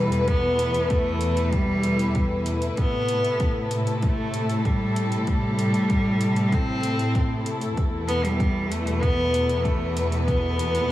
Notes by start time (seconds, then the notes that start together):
Already playing: E2 B2 G3 A3 E4 B4
0.12 closed hi-hat
0.25 B3, kick, closed hi-hat
0.59 closed hi-hat
0.74 closed hi-hat
0.89 A3, kick, closed hi-hat
1.21 closed hi-hat
1.37 closed hi-hat
1.52 G3, kick, closed hi-hat
1.83 closed hi-hat
1.99 closed hi-hat
2.15 kick, closed hi-hat
2.46 closed hi-hat
2.62 closed hi-hat
2.77 A2 C3 B3, kick, closed hi-hat
3.08 A4, closed hi-hat
3.25 closed hi-hat
3.40 kick, closed hi-hat
3.71 closed hi-hat
3.87 closed hi-hat
4.02 A3, kick, closed hi-hat
4.34 closed hi-hat
4.49 closed hi-hat
4.65 G3, kick, closed hi-hat
4.96 closed hi-hat
5.12 closed hi-hat
5.27 G3, kick, closed hi-hat
5.59 closed hi-hat
5.74 closed hi-hat
5.90 kick, closed hi-hat
6.21 closed hi-hat
6.36 closed hi-hat
6.52 C4, kick, closed hi-hat
6.83 closed hi-hat
6.99 closed hi-hat
7.15 kick, closed hi-hat
7.46 closed hi-hat
7.61 closed hi-hat
7.77 E2 B2, kick, closed hi-hat
8.08 B3, closed hi-hat
8.24 G3, closed hi-hat
8.40 kick, closed hi-hat
8.66 B4
8.70 A3, closed hi-hat
8.87 closed hi-hat
9.02 B3, kick, closed hi-hat
9.34 closed hi-hat
9.49 closed hi-hat
9.64 A3, kick, closed hi-hat
9.97 closed hi-hat
10.12 closed hi-hat
10.25 B3, kick, closed hi-hat
10.59 closed hi-hat
10.75 closed hi-hat